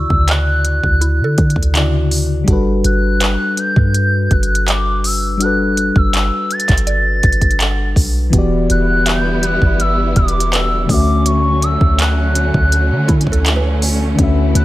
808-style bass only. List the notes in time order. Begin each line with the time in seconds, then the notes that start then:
0.10 D2
0.84 D2
1.20 D3
1.38 D3
1.56 D2
2.48 G1
2.85 G1
3.77 G2
4.31 G1
5.96 G1
6.69 G1
7.24 G1
7.42 G1
7.96 B1
8.33 E1
8.70 E1
9.62 G1
10.16 E1
10.89 D2
11.81 D2
12.54 D2
12.91 D3
13.09 D3
13.27 D2
14.19 D2
14.55 D2